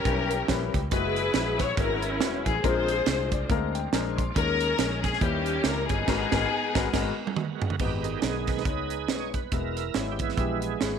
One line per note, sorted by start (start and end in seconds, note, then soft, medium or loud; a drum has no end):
0.00 0.88 B2 medium
0.00 0.70 C#4 medium
0.00 0.89 C#4 medium
0.00 0.88 E4 medium
0.00 0.70 G4 medium
0.00 0.89 G4 medium
0.00 0.75 A#4 loud
0.05 0.42 B1 medium
0.05 0.34 G3 medium
0.05 0.34 C#4 medium
0.05 0.34 E4 medium
0.05 0.35 B4 medium
0.05 kick loud
0.05 closed hi-hat medium
0.31 0.48 G5 medium
0.31 closed hi-hat medium
0.48 0.70 A#1 medium
0.48 0.77 G3 medium
0.48 0.77 C#4 medium
0.48 0.77 E4 medium
0.48 0.77 B4 medium
0.48 0.89 B5 medium
0.48 kick medium
0.48 snare loud
0.48 closed hi-hat medium
0.74 0.89 C#2 medium
0.74 kick medium
0.74 closed hi-hat medium
0.91 1.28 F#1 medium
0.91 2.61 F#3 medium
0.91 1.20 G#3 medium
0.91 2.61 B3 medium
0.91 1.20 E4 medium
0.91 2.61 E4 medium
0.91 1.74 E4 medium
0.91 1.20 F#4 medium
0.91 0.98 G4 medium
0.91 1.75 G#4 medium
0.91 1.21 B4 medium
0.91 1.56 B4 loud
0.91 kick loud
0.91 closed hi-hat loud
0.98 2.63 G#4 medium
1.16 closed hi-hat medium
1.34 1.71 A#1 medium
1.34 1.64 G#3 medium
1.34 1.64 E4 medium
1.34 1.64 F#4 medium
1.34 1.64 B4 medium
1.34 snare loud
1.34 closed hi-hat medium
1.59 1.78 C#5 loud
1.59 kick medium
1.59 snare soft
1.59 closed hi-hat medium
1.77 2.20 G#1 medium
1.77 2.07 G#3 medium
1.77 2.60 C#4 medium
1.77 2.60 E4 medium
1.77 2.07 E4 medium
1.77 2.07 F#4 medium
1.77 2.18 A#4 medium
1.77 2.07 B4 medium
1.77 kick loud
1.77 closed hi-hat medium
2.02 closed hi-hat medium
2.20 2.42 E1 medium
2.20 2.49 G#3 medium
2.20 2.49 E4 medium
2.20 2.50 F#4 medium
2.20 2.50 B4 medium
2.20 snare loud
2.20 closed hi-hat medium
2.45 2.61 A1 medium
2.45 2.62 G#4 medium
2.45 kick medium
2.45 closed hi-hat medium
2.63 3.00 A#1 loud
2.63 3.28 A#2 medium
2.63 4.32 G#3 medium
2.63 2.92 G#3 medium
2.63 4.32 C4 medium
2.63 2.92 C4 medium
2.63 4.32 D4 medium
2.63 2.92 D4 medium
2.63 3.46 F4 medium
2.63 3.46 G#4 medium
2.63 3.90 A#4 medium
2.63 2.93 A#4 loud
2.63 3.50 C5 loud
2.63 kick loud
2.63 closed hi-hat medium
2.88 closed hi-hat medium
3.06 3.43 C2 medium
3.06 3.35 G#3 medium
3.06 3.36 C4 medium
3.06 3.36 D4 medium
3.06 3.36 C5 medium
3.06 snare loud
3.06 closed hi-hat medium
3.32 3.49 D5 medium
3.32 kick medium
3.32 closed hi-hat medium
3.50 3.86 D2 medium
3.50 3.79 G#3 medium
3.50 3.79 C4 medium
3.50 3.79 D4 medium
3.50 3.79 A#4 loud
3.50 3.73 F5 medium
3.50 kick loud
3.50 closed hi-hat medium
3.75 3.92 G5 medium
3.75 closed hi-hat medium
3.93 4.29 A#1 medium
3.93 4.22 G#3 medium
3.93 4.22 C4 medium
3.93 4.22 D4 medium
3.93 4.17 G#4 medium
3.93 4.22 A#4 medium
3.93 4.17 F5 medium
3.93 4.16 G#5 medium
3.93 snare loud
3.93 closed hi-hat loud
4.18 4.59 F4 medium
4.18 4.59 D5 medium
4.18 4.35 C6 medium
4.18 kick medium
4.18 closed hi-hat medium
4.36 4.72 D#2 loud
4.36 5.00 D#3 medium
4.36 5.20 G#3 medium
4.36 4.64 G#3 medium
4.36 5.20 C#4 medium
4.36 5.18 C#4 medium
4.36 4.65 C#4 medium
4.36 5.20 D#4 medium
4.36 4.65 D#4 medium
4.36 4.99 A#4 loud
4.36 5.20 A#4 medium
4.36 4.65 A#4 loud
4.36 kick loud
4.36 closed hi-hat loud
4.61 closed hi-hat medium
4.79 5.15 A#1 medium
4.79 5.07 G#3 medium
4.79 5.07 C#4 medium
4.79 5.07 D#4 medium
4.79 5.07 A#4 medium
4.79 snare loud
4.79 closed hi-hat medium
5.03 5.22 G#4 loud
5.03 kick medium
5.03 snare soft
5.03 closed hi-hat medium
5.13 snare soft
5.21 5.58 D#2 loud
5.21 5.86 D#3 medium
5.21 6.06 G3 medium
5.21 5.50 G3 medium
5.21 6.04 A#3 medium
5.21 6.04 C#4 medium
5.21 6.06 C#4 medium
5.21 5.50 C#4 medium
5.21 6.06 E4 medium
5.21 5.50 E4 medium
5.21 5.65 G4 medium
5.21 6.06 A#4 medium
5.21 5.50 B4 medium
5.21 kick loud
5.21 closed hi-hat medium
5.46 closed hi-hat medium
5.64 5.86 C#2 medium
5.64 5.93 G3 medium
5.64 5.93 C#4 medium
5.64 5.93 E4 medium
5.64 5.93 G4 medium
5.64 5.89 A#4 loud
5.64 snare loud
5.64 closed hi-hat medium
5.89 6.05 G1 medium
5.89 7.33 B3 medium
5.89 7.33 D#4 medium
5.89 7.33 G#4 loud
5.89 kick medium
5.89 closed hi-hat medium
6.07 6.24 G#1 medium
6.07 6.25 G#2 medium
6.07 7.76 G#3 medium
6.07 6.25 G#3 loud
6.07 7.76 B3 medium
6.07 6.25 B3 medium
6.07 7.76 F#4 medium
6.07 6.25 F#4 medium
6.07 7.76 A#4 medium
6.07 6.25 A#4 medium
6.07 kick loud
6.07 snare loud
6.07 crash medium
6.32 6.45 G#1 loud
6.32 6.45 G#2 medium
6.32 6.45 G#3 medium
6.32 6.45 B3 medium
6.32 6.45 F#4 medium
6.32 6.45 A#4 loud
6.32 kick loud
6.32 snare loud
6.75 6.88 G#1 loud
6.75 6.88 G#3 loud
6.75 6.88 B3 loud
6.75 6.88 F#4 medium
6.75 6.88 A#4 loud
6.75 kick loud
6.75 snare loud
6.93 7.11 G#1 medium
6.93 7.11 G#3 loud
6.93 7.11 B3 medium
6.93 7.11 F#4 loud
6.93 7.11 A#4 loud
6.93 kick loud
6.93 snare loud
6.93 crash medium
7.27 high tom medium
7.36 mid tom medium
7.62 floor tom loud
7.70 floor tom medium
7.79 8.16 G#1 medium
7.79 8.44 G#2 medium
7.79 8.08 G#3 medium
7.79 8.08 B3 medium
7.79 8.04 B3 medium
7.79 8.47 D#4 medium
7.79 8.09 D#4 medium
7.79 8.25 G4 medium
7.79 8.09 B4 medium
7.79 kick medium
7.79 crash medium
8.04 8.63 D#3 soft
8.04 8.63 G#3 soft
8.04 8.63 B3 medium
8.04 closed hi-hat medium
8.22 8.66 B1 medium
8.22 8.51 G#3 medium
8.22 8.51 B3 medium
8.22 8.51 D#4 medium
8.22 8.46 G#4 medium
8.22 8.51 B4 medium
8.22 snare loud
8.22 closed hi-hat medium
8.47 9.30 D#4 medium
8.47 9.30 G#4 medium
8.47 9.11 B4 medium
8.47 kick medium
8.47 snare soft
8.47 closed hi-hat medium
8.58 snare soft
8.65 9.09 C#2 medium
8.65 8.94 G#3 medium
8.65 8.94 B3 medium
8.65 8.95 D#4 medium
8.65 8.94 C#5 medium
8.65 kick loud
8.65 closed hi-hat medium
8.90 closed hi-hat medium
9.08 9.46 B1 medium
9.08 9.37 G#3 medium
9.08 9.37 B3 medium
9.08 9.37 D#4 medium
9.08 9.37 B4 medium
9.08 9.33 C#5 medium
9.08 snare loud
9.08 closed hi-hat medium
9.34 9.53 B4 medium
9.34 kick medium
9.34 closed hi-hat medium
9.52 9.88 E1 medium
9.52 10.16 E3 medium
9.52 9.81 G#3 medium
9.52 9.81 B3 medium
9.52 10.20 E4 medium
9.52 9.81 E4 medium
9.52 9.97 A#4 medium
9.52 9.81 B4 medium
9.52 kick medium
9.52 closed hi-hat medium
9.77 closed hi-hat medium
9.94 10.32 G#1 medium
9.94 10.23 G#3 medium
9.94 10.23 B3 medium
9.94 10.24 E4 medium
9.94 10.10 G#4 medium
9.94 10.24 C#5 medium
9.94 snare loud
9.94 closed hi-hat medium
10.12 10.20 G4 medium
10.19 10.79 E3 soft
10.19 10.99 G#3 medium
10.19 10.99 B3 medium
10.19 10.61 E4 medium
10.19 kick medium
10.19 closed hi-hat medium
10.29 snare soft
10.37 10.74 A#1 medium
10.37 10.66 G#3 medium
10.37 10.67 B3 medium
10.37 10.67 E4 medium
10.37 10.67 G4 medium
10.37 kick medium
10.37 closed hi-hat medium
10.62 10.82 G#4 medium
10.62 closed hi-hat medium
10.81 10.99 G#1 medium
10.81 10.99 G#3 medium
10.81 10.99 B3 medium
10.81 10.99 E4 medium
10.81 10.99 G#4 medium
10.81 10.99 C#5 medium
10.81 snare loud
10.81 closed hi-hat medium